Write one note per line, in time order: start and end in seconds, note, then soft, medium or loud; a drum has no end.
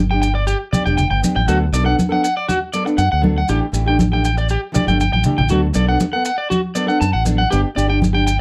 0.00 0.53 G1 medium
0.11 0.27 D4 soft
0.11 0.26 G4 medium
0.11 0.20 G5 medium
0.22 0.32 G5 medium
0.22 maracas medium
0.35 0.44 D5 medium
0.47 0.57 G4 medium
0.47 muted conga soft
0.47 maracas medium
0.73 0.86 B3 medium
0.73 0.86 D4 medium
0.73 0.85 G4 medium
0.73 0.82 D5 medium
0.73 high conga medium
0.73 low conga medium
0.73 maracas medium
0.86 1.07 E1 medium
0.86 1.02 D4 soft
0.86 1.01 G4 medium
0.86 0.95 G5 medium
0.86 maracas soft
0.98 1.07 G5 medium
0.98 low conga medium
0.98 maracas medium
1.11 1.21 G1 medium
1.11 1.20 G5 medium
1.22 1.38 B3 medium
1.22 1.39 D4 medium
1.22 1.39 G4 medium
1.22 muted conga soft
1.22 high conga medium
1.22 maracas medium
1.36 1.46 A1 medium
1.36 1.45 G5 medium
1.47 1.69 D2 medium
1.47 1.63 F#3 medium
1.47 1.64 B3 medium
1.47 1.64 D4 medium
1.47 1.58 F#4 medium
1.47 1.64 A4 medium
1.47 muted conga soft
1.47 maracas medium
1.73 1.94 B1 medium
1.73 1.86 F#3 medium
1.73 1.85 B3 medium
1.73 1.84 D4 medium
1.73 1.83 A4 medium
1.73 1.83 D5 medium
1.73 muted conga soft
1.73 maracas medium
1.84 2.01 B3 soft
1.84 2.01 D4 medium
1.84 2.00 A4 medium
1.84 1.95 F#5 medium
1.99 high conga medium
1.99 maracas medium
2.09 2.26 B3 soft
2.09 2.26 D4 medium
2.09 2.25 A4 medium
2.09 2.21 F#5 medium
2.24 2.33 F#5 medium
2.24 maracas medium
2.37 2.46 D5 medium
2.48 2.58 F#4 medium
2.48 muted conga soft
2.48 high conga medium
2.48 maracas medium
2.73 2.87 F#3 medium
2.73 2.86 B3 medium
2.73 2.85 D4 medium
2.73 2.84 A4 medium
2.73 2.83 D5 medium
2.73 maracas medium
2.85 3.02 B3 soft
2.85 3.02 D4 medium
2.85 3.01 A4 medium
2.85 muted clean electric guitar stroke medium
2.85 maracas soft
2.98 3.09 F#2 medium
2.98 3.08 F#5 medium
2.98 maracas medium
3.12 3.43 D2 medium
3.12 3.21 F#5 medium
3.21 3.38 F#3 medium
3.21 3.39 B3 medium
3.21 3.39 D4 medium
3.21 3.39 A4 medium
3.21 muted conga soft
3.21 high conga medium
3.38 3.46 F#5 medium
3.48 3.60 A1 medium
3.48 3.64 E3 medium
3.48 3.65 A3 medium
3.48 3.65 D4 medium
3.48 3.59 G4 medium
3.48 3.65 G4 medium
3.48 muted conga soft
3.48 maracas medium
3.72 4.56 A1 medium
3.72 3.86 E3 medium
3.72 3.87 A3 medium
3.72 3.87 D4 medium
3.72 3.85 G4 medium
3.72 muted conga soft
3.72 maracas medium
3.86 4.03 A3 soft
3.86 4.03 D4 medium
3.86 4.02 G4 medium
3.86 3.96 G5 medium
3.99 high conga loud
3.99 maracas medium
4.11 4.28 A3 soft
4.11 4.28 D4 soft
4.11 4.27 G4 medium
4.11 4.22 G5 medium
4.24 4.35 G5 medium
4.24 maracas medium
4.38 4.47 D5 medium
4.38 maracas soft
4.49 4.60 G4 medium
4.49 muted conga soft
4.49 maracas medium
4.72 4.87 E3 medium
4.72 4.87 A3 medium
4.72 4.87 D4 medium
4.72 4.85 G4 medium
4.72 4.85 D5 medium
4.72 maracas medium
4.76 high conga medium
4.76 low conga medium
4.87 5.08 G1 medium
4.87 5.04 A3 soft
4.87 5.03 D4 medium
4.87 5.02 G4 soft
4.87 4.97 G5 medium
4.87 high conga medium
4.87 maracas soft
5.00 5.10 G5 medium
5.00 high conga medium
5.00 maracas medium
5.13 5.23 A1 medium
5.13 5.22 G5 medium
5.13 high conga medium
5.24 5.40 E3 medium
5.24 5.41 A3 medium
5.24 5.41 D4 medium
5.24 5.41 G4 medium
5.24 low conga medium
5.24 maracas medium
5.38 5.49 A1 medium
5.38 5.47 G5 medium
5.38 low conga medium
5.49 5.71 D2 medium
5.49 5.66 F#3 medium
5.49 5.66 B3 medium
5.49 5.66 D4 medium
5.49 5.60 F#4 medium
5.49 5.67 A4 medium
5.49 muted conga soft
5.49 maracas medium
5.73 5.96 B1 medium
5.73 5.87 F#3 medium
5.73 5.88 B3 medium
5.73 5.88 D4 medium
5.73 5.87 A4 medium
5.73 5.85 D5 medium
5.73 muted conga soft
5.73 maracas medium
5.88 6.04 B3 soft
5.88 6.04 D4 soft
5.88 6.03 A4 medium
5.88 5.97 F#5 medium
6.00 high conga medium
6.00 maracas medium
6.13 6.29 B3 soft
6.13 6.28 A4 medium
6.13 6.22 F#5 medium
6.13 muted nylon-string guitar stroke soft
6.25 6.35 F#5 medium
6.25 maracas medium
6.38 6.47 D5 medium
6.50 6.60 F#4 medium
6.50 muted conga soft
6.50 high conga medium
6.50 maracas medium
6.75 6.89 F#3 medium
6.75 6.88 B3 medium
6.75 6.87 D4 medium
6.75 6.85 A4 medium
6.75 6.85 D5 medium
6.75 maracas medium
6.87 7.04 B3 soft
6.87 7.04 D4 soft
6.87 7.03 A4 medium
6.87 6.98 F#5 medium
6.87 maracas soft
7.01 7.12 F#2 medium
7.01 7.10 A5 medium
7.01 maracas medium
7.13 7.45 A1 medium
7.13 7.23 F#5 medium
7.24 7.41 F#3 medium
7.24 7.41 B3 medium
7.24 7.42 D4 medium
7.24 7.42 A4 medium
7.24 muted conga soft
7.24 high conga medium
7.24 maracas medium
7.38 7.48 F#5 medium
7.50 7.63 G1 medium
7.50 7.67 B3 medium
7.50 7.67 D4 medium
7.50 7.60 G4 medium
7.50 7.67 G4 medium
7.50 muted conga soft
7.50 maracas medium
7.75 8.41 G1 medium
7.75 7.89 B3 medium
7.75 7.89 D4 medium
7.75 7.87 G4 medium
7.75 7.86 D5 medium
7.75 muted conga soft
7.75 maracas medium
7.88 8.05 D4 soft
7.88 8.04 G4 medium
7.88 7.99 G5 medium
8.02 high conga medium
8.02 maracas medium
8.13 8.30 D4 soft
8.13 8.29 G4 medium
8.13 8.24 G5 medium
8.27 8.36 G5 medium
8.27 maracas medium